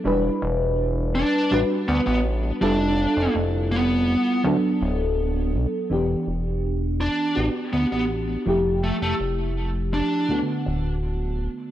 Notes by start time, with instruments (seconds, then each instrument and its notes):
0.04 analog synth bass E1, fm electric piano G3 D4 E4 B4
0.42 analog synth bass E1
1.15 lead electric guitar D4
1.51 analog synth bass A1, fm electric piano G3 D4 F#4 B4
1.88 analog synth bass D2, lead electric guitar B3
2.07 analog synth bass A1, lead electric guitar B3
2.61 analog synth bass F1, fm electric piano G3 E4 F4 A4, lead electric guitar D4
3.17 analog synth bass F1
3.35 analog synth bass F1
3.72 lead electric guitar B3
4.43 analog synth bass D2, fm electric piano F#3 B3 D4 A4
4.81 analog synth bass D1
5.54 analog synth bass B1
5.90 analog synth bass E1, fm electric piano E3 B3 D4 G4
6.27 analog synth bass E1
7.01 lead electric guitar D4
7.35 analog synth bass A1, fm electric piano B3 D4 F#4 G4
7.73 analog synth bass D2, lead electric guitar B3
7.92 analog synth bass A1, lead electric guitar B3
8.46 analog synth bass F1, fm electric piano F3 A3 E4 G4
8.84 lead electric guitar A3
9.02 analog synth bass F1, lead electric guitar A3
9.20 analog synth bass F1
9.94 lead electric guitar D4
10.28 analog synth bass D2, fm electric piano D3 A3 B3 F#4
10.66 analog synth bass D1